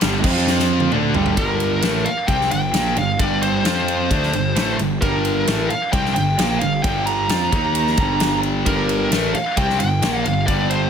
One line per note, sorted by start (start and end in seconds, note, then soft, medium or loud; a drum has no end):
0.01 0.23 G1 medium
0.01 0.23 G2 medium
0.01 0.24 D3 loud
0.01 0.24 G3 loud
0.01 snare loud
0.01 ride loud
0.24 0.88 F2 loud
0.24 0.91 F3 loud
0.24 0.92 C4 loud
0.24 0.92 F4 loud
0.24 kick loud
0.24 crash loud
0.36 snare soft
0.47 snare medium
0.59 snare medium
0.80 high tom medium
0.92 1.13 D2 medium
0.92 1.13 D3 loud
0.92 1.14 A3 loud
0.92 1.15 D4 loud
0.92 mid tom medium
1.14 1.36 G1 loud
1.14 1.35 G2 medium
1.14 1.36 D3 medium
1.14 1.37 G3 medium
1.14 floor tom medium
1.26 floor tom medium
1.37 1.80 G1 medium
1.37 1.82 G2 medium
1.37 1.82 D3 medium
1.37 1.83 G3 medium
1.37 2.08 A#4 medium
1.37 kick loud
1.37 ride medium
1.60 ride medium
1.82 2.05 A1 medium
1.82 2.05 A2 medium
1.82 2.05 E3 medium
1.82 2.06 A3 loud
1.82 snare loud
1.82 ride medium
2.05 2.27 F5 medium
2.05 muted distorted electric guitar stroke medium
2.05 muted overdriven electric guitar stroke medium
2.05 muted picked electric bass stroke soft
2.05 ride medium
2.28 2.50 C2 medium
2.28 2.50 C3 medium
2.28 2.51 G3 medium
2.28 2.51 C4 medium
2.28 2.51 G5 loud
2.28 kick loud
2.28 ride medium
2.41 snare soft
2.50 2.73 G1 medium
2.50 2.69 G2 medium
2.50 2.69 D3 medium
2.50 2.98 G5 loud
2.50 ride medium
2.73 2.95 A#1 medium
2.73 2.96 A#2 medium
2.73 2.96 F3 medium
2.73 2.97 A#3 loud
2.73 snare loud
2.73 ride medium
2.96 3.18 G1 medium
2.96 3.15 G2 medium
2.96 3.15 D3 medium
2.96 3.19 F5 loud
2.96 ride medium
3.19 3.62 G1 medium
3.19 3.64 G2 medium
3.19 3.64 D3 medium
3.19 3.65 G3 medium
3.19 3.42 D5 medium
3.19 kick loud
3.19 ride medium
3.42 4.75 C5 medium
3.42 ride medium
3.64 4.08 F2 medium
3.64 4.10 F3 loud
3.64 4.10 C4 loud
3.64 4.10 F4 loud
3.64 snare loud
3.64 ride medium
3.88 ride medium
4.10 4.32 D2 medium
4.10 4.32 D3 medium
4.10 4.33 A3 medium
4.10 4.33 D4 medium
4.10 kick loud
4.10 ride medium
4.23 snare soft
4.33 4.55 G1 medium
4.33 4.52 G2 medium
4.33 4.52 D3 medium
4.33 ride medium
4.55 4.78 A1 medium
4.55 4.78 A2 medium
4.55 4.78 E3 medium
4.55 4.79 A3 loud
4.55 snare loud
4.55 ride medium
4.79 5.00 G1 medium
4.79 4.97 G2 medium
4.79 4.97 D3 medium
4.79 ride medium
5.02 5.45 G1 medium
5.02 5.47 G2 medium
5.02 5.46 D3 medium
5.02 5.47 G3 medium
5.02 5.66 A#4 medium
5.02 kick loud
5.02 ride medium
5.25 ride medium
5.47 5.69 A1 medium
5.47 5.69 A2 medium
5.47 5.70 E3 medium
5.47 5.70 A3 medium
5.47 snare loud
5.47 ride medium
5.70 5.91 F5 medium
5.70 muted distorted electric guitar stroke medium
5.70 muted overdriven electric guitar stroke medium
5.70 muted picked electric bass stroke soft
5.70 ride medium
5.92 6.14 C2 medium
5.92 6.15 C3 medium
5.92 6.15 G3 medium
5.92 6.15 C4 medium
5.92 6.13 G5 medium
5.92 kick loud
5.92 ride medium
6.05 snare soft
6.14 6.37 G1 medium
6.14 6.34 G2 medium
6.14 6.34 D3 medium
6.14 6.58 G5 loud
6.14 ride medium
6.38 6.60 A#1 medium
6.38 6.61 A#2 medium
6.38 6.61 F3 loud
6.38 6.62 A#3 loud
6.38 snare loud
6.38 ride medium
6.59 6.83 G1 medium
6.59 6.80 G2 soft
6.59 6.80 D3 medium
6.59 6.83 F5 medium
6.59 ride medium
6.83 7.27 G1 medium
6.83 7.29 G2 medium
6.83 7.29 D3 medium
6.83 7.29 G3 medium
6.83 7.05 G5 loud
6.83 kick loud
6.83 ride medium
7.06 8.39 A#5 medium
7.06 ride medium
7.29 7.51 F2 medium
7.29 7.52 F3 medium
7.29 7.52 C4 medium
7.29 7.52 F4 loud
7.29 snare loud
7.29 ride medium
7.52 7.95 D#2 medium
7.52 7.97 D#3 medium
7.52 7.98 A#3 medium
7.52 7.98 D#4 loud
7.52 kick loud
7.52 ride medium
7.75 ride loud
7.87 snare soft
7.97 8.62 G1 medium
7.97 8.64 G2 medium
7.97 8.65 D3 loud
7.97 8.65 G3 medium
7.97 kick loud
7.97 ride medium
8.20 snare loud
8.20 ride medium
8.43 ride medium
8.66 9.09 G1 medium
8.66 9.11 G2 medium
8.66 9.10 D3 medium
8.66 9.11 G3 medium
8.66 9.31 A#4 medium
8.66 kick medium
8.66 ride medium
8.89 ride medium
9.11 9.34 A1 medium
9.11 9.34 A2 medium
9.11 9.34 E3 loud
9.11 9.34 A3 loud
9.11 snare loud
9.11 ride medium
9.34 9.58 F5 medium
9.34 muted distorted electric guitar stroke medium
9.34 muted picked electric bass stroke soft
9.34 muted overdriven electric guitar stroke medium
9.34 ride medium
9.57 9.79 C2 loud
9.57 9.79 C3 medium
9.57 9.80 G3 medium
9.57 9.80 C4 medium
9.57 9.79 G5 medium
9.57 kick loud
9.57 ride medium
9.70 snare soft
9.79 10.01 G1 medium
9.79 9.98 G2 medium
9.79 9.98 D3 medium
9.79 10.27 G5 loud
9.79 ride medium
10.02 10.24 A#1 medium
10.02 10.25 A#2 medium
10.02 10.25 F3 loud
10.02 10.25 A#3 loud
10.02 snare loud
10.02 ride medium
10.24 10.47 G1 medium
10.24 10.44 G2 soft
10.24 10.44 D3 medium
10.24 10.46 F5 medium
10.24 ride medium
10.47 10.90 G1 medium
10.47 10.90 G2 medium
10.47 10.90 D3 medium
10.47 10.90 G3 medium
10.47 10.69 D5 loud
10.47 kick medium
10.47 ride medium
10.70 10.90 C5 medium
10.70 ride medium